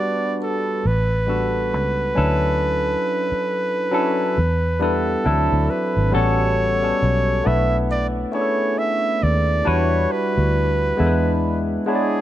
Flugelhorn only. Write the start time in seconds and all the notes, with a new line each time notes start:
Already playing: D5
0.42 A4
0.87 B4
4.83 A4
5.70 B4
6.14 C#5
7.47 E5
7.91 D5
8.34 C#5
8.78 E5
9.23 D5
9.68 C#5
10.12 B4
11.88 G#4